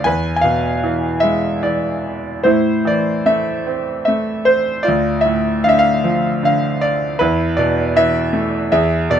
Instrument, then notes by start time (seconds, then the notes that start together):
grand piano
0.04 E2 B4 G#5
0.36 G#5
0.41 B2 F5
0.84 E3
1.20 G#3 E5
1.63 E3 D5
2.43 A2 E4 C5
2.85 E3 D5
3.26 A3 E5
3.67 C4
4.05 A3 E5
4.45 C5
4.83 F4 D5
4.88 D2
5.21 E5
5.26 A2
5.64 D3 F5
5.69 E5
5.79 F5
6.04 F3
6.43 D3 F5
6.81 D5
7.19 E2 E4 B4
7.57 B2 D5
7.96 E3 E5
8.33 A3
8.72 E2 G#4 E5
9.10 B2 D5